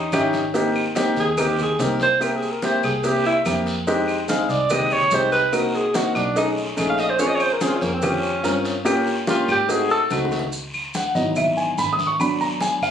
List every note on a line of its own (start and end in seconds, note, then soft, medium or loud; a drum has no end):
0.00 0.51 D#4 medium
0.12 1.11 G#1 loud
0.12 0.42 C#4 loud
0.12 0.42 D#4 medium
0.12 0.42 E4 medium
0.12 0.42 G4 loud
0.12 cowbell medium
0.12 high conga medium
0.12 short guiro medium
0.12 claves medium
0.12 maracas medium
0.33 cowbell medium
0.33 high conga medium
0.33 short guiro medium
0.33 maracas soft
0.54 0.84 A#3 loud
0.54 0.84 C4 medium
0.54 0.84 D#4 medium
0.54 0.84 G4 loud
0.54 cowbell loud
0.54 high conga soft
0.54 long guiro medium
0.54 maracas medium
0.75 high conga soft
0.75 claves medium
0.75 maracas soft
0.95 1.25 A#3 medium
0.95 1.25 C4 medium
0.95 1.25 D#4 medium
0.95 1.25 G4 loud
0.95 cowbell medium
0.95 high conga loud
0.95 short guiro medium
0.95 maracas medium
1.16 1.75 D#2 loud
1.16 1.42 G#4 medium
1.16 short guiro medium
1.16 maracas soft
1.37 1.67 A#3 medium
1.37 1.67 C4 medium
1.37 1.67 D#4 medium
1.37 1.60 G4 medium
1.37 1.67 A#4 medium
1.37 cowbell loud
1.37 high conga soft
1.37 low conga medium
1.37 long guiro medium
1.37 claves medium
1.37 maracas medium
1.59 1.84 G#4 medium
1.59 high conga soft
1.59 low conga medium
1.59 maracas soft
1.79 2.77 C2 loud
1.79 2.08 A#3 medium
1.79 2.09 C4 medium
1.79 2.09 D#4 medium
1.79 2.09 G4 medium
1.79 2.02 A#4 medium
1.79 cowbell medium
1.79 high conga medium
1.79 short guiro medium
1.79 maracas medium
2.00 2.25 C5 loud
2.00 cowbell medium
2.00 high conga medium
2.00 short guiro medium
2.00 maracas soft
2.20 2.50 A#3 medium
2.20 2.50 C4 medium
2.20 2.50 E4 medium
2.20 2.50 G4 medium
2.20 2.38 A#4 medium
2.20 cowbell loud
2.20 high conga soft
2.20 long guiro medium
2.20 claves medium
2.20 maracas medium
2.36 2.53 G#4 medium
2.42 high conga soft
2.42 maracas soft
2.51 2.66 A#4 medium
2.62 2.92 A#3 medium
2.62 2.92 C4 medium
2.62 2.92 E4 medium
2.62 2.92 G4 medium
2.62 2.84 C5 loud
2.62 cowbell medium
2.62 high conga loud
2.62 short guiro medium
2.62 maracas medium
2.83 3.42 C2 medium
2.83 3.07 G#4 medium
2.83 high conga soft
2.83 short guiro medium
2.83 claves medium
2.83 maracas soft
3.04 3.33 A#3 medium
3.04 3.33 C4 medium
3.04 3.34 E4 medium
3.04 3.34 G4 medium
3.04 3.26 G4 medium
3.04 cowbell loud
3.04 high conga soft
3.04 long guiro medium
3.04 maracas medium
3.25 3.38 E4 medium
3.25 high conga soft
3.25 maracas soft
3.45 4.44 F2 medium
3.45 3.75 A#3 medium
3.45 3.75 C4 medium
3.45 3.75 E4 medium
3.45 3.75 G4 medium
3.45 cowbell medium
3.45 high conga medium
3.45 short guiro medium
3.45 claves medium
3.45 maracas medium
3.66 cowbell medium
3.66 short guiro medium
3.66 maracas soft
3.87 4.16 G#3 medium
3.87 4.17 C4 medium
3.87 4.17 D#4 medium
3.87 4.17 G4 loud
3.87 cowbell loud
3.87 high conga soft
3.87 long guiro medium
3.87 maracas medium
4.08 high conga soft
4.08 claves medium
4.08 maracas soft
4.28 4.58 G#3 medium
4.28 4.58 C4 medium
4.28 4.58 D#4 medium
4.28 4.58 G#4 medium
4.28 4.51 F5 medium
4.28 cowbell medium
4.28 high conga loud
4.28 short guiro medium
4.28 maracas medium
4.49 5.08 C2 loud
4.49 4.74 D5 medium
4.49 high conga soft
4.49 short guiro medium
4.49 maracas soft
4.70 5.00 G#3 medium
4.70 5.00 C4 medium
4.70 5.00 D#4 medium
4.70 5.00 G4 medium
4.70 4.94 D#5 loud
4.70 cowbell loud
4.70 high conga soft
4.70 low conga medium
4.70 long guiro medium
4.70 claves medium
4.70 maracas medium
4.91 5.16 C#5 loud
4.91 high conga soft
4.91 low conga medium
4.91 maracas soft
5.11 6.10 C2 medium
5.11 5.42 G#3 medium
5.11 5.42 C4 medium
5.11 5.42 D#4 medium
5.11 5.42 G4 medium
5.11 5.32 C5 medium
5.11 cowbell medium
5.11 high conga medium
5.11 short guiro medium
5.11 maracas medium
5.32 5.56 B4 medium
5.32 cowbell medium
5.32 short guiro medium
5.32 maracas soft
5.52 5.82 A#3 medium
5.52 5.82 C4 medium
5.52 5.83 D#4 medium
5.52 5.83 F#4 medium
5.52 5.77 A#4 medium
5.52 cowbell loud
5.52 high conga soft
5.52 long guiro medium
5.52 claves medium
5.52 maracas medium
5.74 5.97 G#4 medium
5.74 high conga soft
5.74 maracas soft
5.94 6.24 A#3 medium
5.94 6.24 C4 medium
5.94 6.24 D#4 medium
5.94 6.24 F#4 medium
5.94 6.17 F#4 medium
5.94 cowbell medium
5.94 high conga loud
5.94 short guiro medium
5.94 maracas medium
6.15 6.74 B1 loud
6.15 6.37 D4 medium
6.15 short guiro medium
6.15 claves medium
6.15 maracas soft
6.35 6.65 A3 medium
6.35 6.65 C#4 medium
6.35 6.65 D#4 medium
6.35 6.50 D#4 loud
6.35 6.66 G#4 medium
6.35 cowbell loud
6.35 high conga soft
6.35 long guiro medium
6.35 maracas medium
6.57 high conga soft
6.57 maracas soft
6.77 7.76 A#1 loud
6.77 7.07 A3 medium
6.77 7.07 C#4 medium
6.77 7.07 D#4 medium
6.77 7.07 G#4 medium
6.77 cowbell medium
6.77 high conga medium
6.77 short guiro medium
6.77 claves medium
6.77 maracas medium
6.90 7.01 F5 medium
6.98 7.11 D#5 loud
6.98 cowbell medium
6.98 short guiro medium
6.98 maracas soft
7.10 7.22 C5 medium
7.19 7.49 C4 medium
7.19 7.49 C#4 medium
7.19 7.49 F4 medium
7.19 7.49 G#4 medium
7.19 7.29 C#5 medium
7.19 cowbell loud
7.19 high conga soft
7.19 long guiro medium
7.19 maracas medium
7.27 7.37 D#5 loud
7.35 7.43 C#5 medium
7.40 7.54 C5 loud
7.40 high conga soft
7.40 claves medium
7.40 maracas soft
7.53 7.64 A#4 medium
7.61 7.90 C4 medium
7.61 7.91 C#4 medium
7.61 7.91 F4 medium
7.61 7.91 G#4 medium
7.61 7.70 G#4 medium
7.61 cowbell medium
7.61 high conga loud
7.61 short guiro medium
7.61 maracas medium
7.69 7.78 F4 medium
7.76 7.84 C#4 medium
7.81 8.40 F2 medium
7.81 7.95 A#3 medium
7.81 high conga soft
7.81 short guiro medium
7.81 maracas soft
7.94 8.06 C4 medium
8.02 8.32 C4 medium
8.02 8.32 C#4 medium
8.02 8.87 C#4 medium
8.02 8.32 F4 medium
8.02 8.32 G4 medium
8.02 cowbell loud
8.02 high conga soft
8.02 low conga medium
8.02 long guiro medium
8.02 claves medium
8.02 maracas medium
8.23 high conga soft
8.23 maracas soft
8.43 9.43 G2 loud
8.43 8.73 C4 medium
8.43 8.73 C#4 medium
8.43 8.73 F4 medium
8.43 8.74 A#4 medium
8.43 cowbell medium
8.43 high conga medium
8.43 short guiro medium
8.43 maracas medium
8.65 cowbell medium
8.65 short guiro medium
8.65 maracas soft
8.85 9.15 A#3 loud
8.85 9.15 C#4 medium
8.85 9.15 F4 medium
8.85 9.15 G4 loud
8.85 cowbell loud
8.85 high conga soft
8.85 long guiro medium
8.85 claves medium
8.85 maracas medium
9.07 high conga soft
9.07 maracas soft
9.27 9.57 A#3 medium
9.27 9.57 C#4 medium
9.27 9.57 F4 medium
9.27 9.48 F4 medium
9.27 9.57 G4 medium
9.27 cowbell medium
9.27 high conga loud
9.27 short guiro medium
9.27 maracas medium
9.48 10.07 G#2 loud
9.48 9.73 G4 medium
9.48 short guiro medium
9.48 claves medium
9.48 maracas soft
9.68 9.98 A3 medium
9.68 9.98 C4 medium
9.68 9.98 D#4 medium
9.68 9.98 F#4 medium
9.68 9.90 G#4 medium
9.68 cowbell loud
9.68 high conga soft
9.68 long guiro medium
9.68 maracas medium
9.90 10.03 A4 loud
9.90 high conga soft
9.90 maracas soft
10.10 11.09 C#2 medium
10.10 10.40 A3 medium
10.10 10.40 C4 medium
10.10 10.40 D#4 medium
10.10 10.40 F#4 loud
10.10 cowbell medium
10.10 high bongo medium
10.10 high conga loud
10.10 short guiro medium
10.10 claves medium
10.10 maracas medium
10.25 high bongo loud
10.31 cowbell medium
10.31 low conga medium
10.31 short guiro medium
10.31 maracas soft
10.39 low bongo medium
10.52 high conga soft
10.52 long guiro medium
10.52 maracas medium
10.74 high conga soft
10.74 claves medium
10.74 maracas soft
10.94 11.15 F#5 medium
10.94 high conga medium
10.94 short guiro medium
10.94 maracas medium
11.15 11.74 G#1 medium
11.15 11.74 E3 medium
11.15 11.74 F#3 medium
11.15 11.74 B3 medium
11.15 11.75 D#4 medium
11.15 11.35 D#5 medium
11.15 short guiro medium
11.15 maracas soft
11.36 11.57 E5 medium
11.36 high conga soft
11.36 low conga medium
11.36 long guiro medium
11.36 claves medium
11.36 maracas medium
11.57 11.77 G#5 medium
11.57 high conga soft
11.57 maracas soft
11.78 12.76 G#1 medium
11.78 11.92 B5 medium
11.78 high conga medium
11.78 short guiro medium
11.78 maracas medium
11.93 12.06 D#6 loud
11.99 high conga medium
11.99 short guiro medium
11.99 maracas soft
12.07 12.20 C#6 medium
12.19 12.91 F#3 medium
12.19 12.91 B3 medium
12.19 12.91 D4 medium
12.19 12.40 B5 medium
12.19 high conga soft
12.19 long guiro medium
12.19 claves medium
12.19 maracas medium
12.40 12.61 A#5 medium
12.40 high conga soft
12.40 maracas soft
12.61 12.82 G#5 medium
12.61 high conga loud
12.61 short guiro medium
12.61 maracas medium
12.80 12.91 G1 medium
12.80 12.91 F5 medium
12.80 high conga soft
12.80 short guiro medium
12.80 claves medium
12.80 maracas soft